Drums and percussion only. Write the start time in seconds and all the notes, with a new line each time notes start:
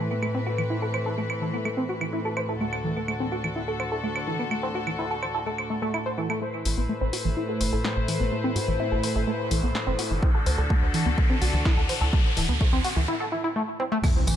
0.23 claves
0.58 claves
0.94 claves
1.30 claves
1.65 claves
2.01 claves
2.37 claves
2.73 claves
3.08 claves
3.44 claves
3.80 claves
4.16 claves
4.51 claves
4.87 claves
5.23 claves
5.58 claves
5.94 claves
6.30 claves
6.65 open hi-hat
7.13 open hi-hat
7.61 open hi-hat
7.84 snare
8.08 open hi-hat
8.56 open hi-hat
9.03 open hi-hat
9.51 open hi-hat
9.75 snare
9.99 open hi-hat
10.23 kick
10.46 open hi-hat
10.70 kick
10.94 open hi-hat
11.18 kick
11.42 open hi-hat
11.65 kick, snare
11.89 open hi-hat
12.13 kick
12.37 open hi-hat
12.61 kick
12.84 open hi-hat
13.80 high tom
13.92 mid tom
14.04 kick, crash, tambourine, claves
14.27 open hi-hat, tambourine